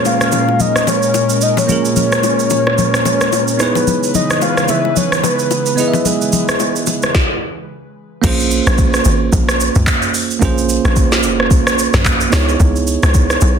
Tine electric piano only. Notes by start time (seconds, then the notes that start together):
Already playing: A#3 C#4 F4 G#4 C#5
1.67 A#3 C#4 F4
1.71 G#4 A#4
3.57 B3 D#4 E4
3.62 G#4 C#5
5.76 B3 E4 D#5
5.80 G#4 D#5
5.88 E5
8.22 A#3 C#4 F4 G#4
8.27 C5
10.40 A#3 C#4 F4
10.44 G#4 C5
12.30 B3 D#4 E4
12.34 G#4 C#5